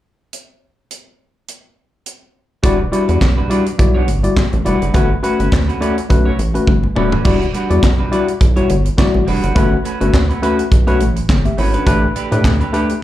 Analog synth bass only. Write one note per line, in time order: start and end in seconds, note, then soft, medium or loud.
2.64 2.84 E1 medium
3.09 3.18 E2 medium
3.21 3.42 B1 medium
3.79 4.10 B1 medium
4.08 4.29 G1 medium
4.53 4.62 A1 medium
4.66 4.77 F1 loud
4.82 4.91 F#1 loud
4.95 5.15 G1 loud
5.40 5.49 G1 medium
5.52 5.73 D2 loud
6.10 6.31 B1 loud
6.39 6.59 A1 medium
6.68 6.88 G1 medium
6.97 7.17 D#1 medium
7.25 7.46 E1 loud
7.70 7.79 E2 loud
7.83 8.03 B1 loud
8.41 8.61 B1 medium
8.70 8.90 G1 medium
9.14 9.23 A1 medium
9.27 9.39 F1 medium
9.43 9.52 F#1 loud
9.56 9.76 G1 loud
10.01 10.10 G1 loud
10.14 10.34 D2 loud
10.72 11.02 B1 loud
11.01 11.21 A1 loud
11.29 11.50 G1 medium
11.58 11.78 G#1 loud
11.87 12.07 A1 loud
12.32 12.41 A2 loud
12.44 12.65 D2 loud